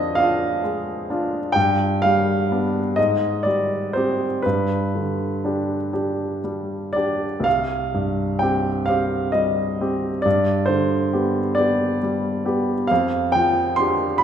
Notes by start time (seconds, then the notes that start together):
Already playing: F2 F3 D4 F4 D5 D#5
0.15 D4 F4 F5
0.64 G#3
1.10 D4 F4
1.52 G2 G5
2.02 G3 F5
2.51 B3 D4
2.96 G#2 D#5
3.43 G3 D5
3.93 C4 G4 C5
4.42 G2 B4
4.95 D3
5.45 D4 G4
5.93 D4 G4
6.44 G3
6.93 D4 G4 D5
7.40 C2 F5
7.94 G2
8.39 C4 G4 G5
8.86 C4 G4 F5
9.32 G3 D#5
9.81 C4 G4
10.22 G2 D5
10.66 D3 C5
11.13 B3 G4
11.55 B3 G4 D5
12.03 G3
12.45 B3 G4
12.87 F2 F5
13.32 F3 G5
13.76 D4 G4 C6
14.18 B5